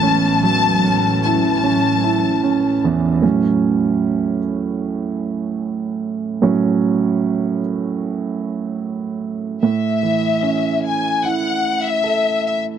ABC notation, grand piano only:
X:1
M:4/4
L:1/8
Q:1/4=75
K:A
V:1 name="Grand piano"
[A,,,A,,C] F, C E C E C [E,,E,] | [A,,F,C]3 z4 z | [A,,F,C]3 z4 z | A,, E, C2 E2 A2 |]